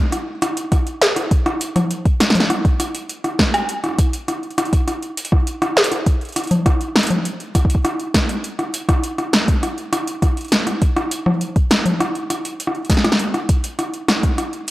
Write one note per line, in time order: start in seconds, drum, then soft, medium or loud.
0.12 cross-stick medium
0.12 closed hi-hat medium
0.42 cross-stick medium
0.42 closed hi-hat loud
0.57 closed hi-hat medium
0.72 kick loud
0.72 cross-stick medium
0.72 closed hi-hat medium
0.87 closed hi-hat soft
1.02 snare loud
1.02 closed hi-hat medium
1.16 cross-stick medium
1.16 closed hi-hat medium
1.31 kick loud
1.31 closed hi-hat medium
1.46 cross-stick medium
1.46 closed hi-hat soft
1.61 closed hi-hat loud
1.76 cross-stick medium
1.76 closed hi-hat medium
1.76 low conga medium
1.91 closed hi-hat medium
2.05 kick loud
2.05 closed hi-hat soft
2.20 cross-stick medium
2.20 snare loud
2.20 closed hi-hat loud
2.30 snare loud
2.35 closed hi-hat medium
2.35 low conga medium
2.40 snare medium
2.50 cross-stick medium
2.50 closed hi-hat medium
2.65 kick loud
2.65 closed hi-hat soft
2.80 cross-stick medium
2.80 closed hi-hat loud
2.95 closed hi-hat medium
3.09 closed hi-hat medium
3.24 cross-stick medium
3.24 closed hi-hat soft
3.39 kick loud
3.39 snare loud
3.54 cross-stick medium
3.54 closed hi-hat medium
3.69 closed hi-hat medium
3.84 cross-stick soft
3.84 closed hi-hat soft
3.86 cross-stick soft
3.89 cross-stick soft
3.91 cross-stick soft
3.94 cross-stick soft
3.96 kick loud
3.96 cross-stick soft
3.96 closed hi-hat loud
4.13 closed hi-hat medium
4.28 cross-stick medium
4.28 closed hi-hat medium
4.43 closed hi-hat soft
4.51 closed hi-hat soft
4.58 cross-stick medium
4.58 closed hi-hat loud
4.65 closed hi-hat soft
4.73 kick loud
4.73 closed hi-hat medium
4.88 cross-stick soft
4.88 closed hi-hat medium
5.03 closed hi-hat soft
5.17 closed hi-hat medium
5.25 closed hi-hat medium
5.32 kick loud
5.32 cross-stick soft
5.47 closed hi-hat medium
5.62 cross-stick medium
5.62 closed hi-hat soft
5.77 snare loud
5.84 closed hi-hat medium
5.92 cross-stick medium
5.92 closed hi-hat soft
6.06 kick loud
6.06 closed hi-hat medium
6.21 closed hi-hat soft
6.25 closed hi-hat soft
6.29 closed hi-hat soft
6.32 cross-stick medium
6.32 closed hi-hat soft
6.36 closed hi-hat loud
6.40 closed hi-hat soft
6.44 closed hi-hat soft
6.47 closed hi-hat soft
6.51 closed hi-hat medium
6.51 low conga medium
6.66 kick loud
6.66 cross-stick medium
6.66 closed hi-hat medium
6.81 closed hi-hat soft
6.96 cross-stick medium
6.96 snare loud
6.96 closed hi-hat soft
6.99 closed hi-hat medium
7.03 closed hi-hat medium
7.07 closed hi-hat medium
7.10 closed hi-hat medium
7.10 low conga medium
7.25 closed hi-hat medium
7.40 closed hi-hat soft
7.55 kick loud
7.55 cross-stick medium
7.55 closed hi-hat medium
7.65 kick medium
7.70 closed hi-hat soft
7.75 kick medium
7.85 cross-stick medium
7.85 closed hi-hat medium
8.00 closed hi-hat soft
8.14 kick loud
8.14 cross-stick soft
8.14 snare loud
8.14 closed hi-hat medium
8.29 closed hi-hat medium
8.44 closed hi-hat medium
8.59 cross-stick medium
8.59 closed hi-hat soft
8.74 closed hi-hat medium
8.89 kick loud
8.89 cross-stick medium
8.89 closed hi-hat medium
9.04 closed hi-hat medium
9.18 cross-stick soft
9.18 closed hi-hat soft
9.33 snare loud
9.33 closed hi-hat loud
9.48 kick loud
9.48 closed hi-hat soft
9.63 cross-stick medium
9.63 closed hi-hat soft
9.78 closed hi-hat soft
9.93 cross-stick medium
9.93 closed hi-hat medium
10.07 closed hi-hat soft
10.22 kick loud
10.22 cross-stick medium
10.22 closed hi-hat soft
10.37 closed hi-hat soft
10.41 closed hi-hat soft
10.45 closed hi-hat soft
10.48 snare loud
10.48 closed hi-hat soft
10.52 closed hi-hat medium
10.56 closed hi-hat soft
10.59 closed hi-hat soft
10.63 cross-stick medium
10.63 closed hi-hat soft
10.67 closed hi-hat soft
10.82 kick loud
10.82 closed hi-hat medium
10.97 cross-stick medium
10.97 closed hi-hat soft
11.11 closed hi-hat medium
11.26 cross-stick medium
11.26 low conga loud
11.41 closed hi-hat soft
11.56 kick loud
11.56 closed hi-hat soft
11.71 cross-stick medium
11.71 snare loud
11.71 closed hi-hat medium
11.86 closed hi-hat medium
11.86 low conga medium
12.00 cross-stick medium
12.00 closed hi-hat medium
12.15 closed hi-hat soft
12.30 cross-stick medium
12.30 closed hi-hat medium
12.45 closed hi-hat soft
12.60 closed hi-hat medium
12.67 cross-stick medium
12.75 closed hi-hat soft
12.85 closed hi-hat soft
12.90 kick loud
12.90 snare medium
12.90 closed hi-hat medium
12.97 snare medium
13.04 cross-stick medium
13.04 snare medium
13.04 closed hi-hat medium
13.12 snare loud
13.19 closed hi-hat medium
13.34 cross-stick medium
13.34 closed hi-hat soft
13.49 kick loud
13.49 closed hi-hat loud
13.64 closed hi-hat medium
13.79 cross-stick medium
13.79 closed hi-hat medium
13.94 closed hi-hat soft
14.08 cross-stick medium
14.08 snare loud
14.08 closed hi-hat medium
14.23 kick loud
14.23 closed hi-hat medium
14.38 cross-stick medium
14.38 closed hi-hat medium
14.53 closed hi-hat soft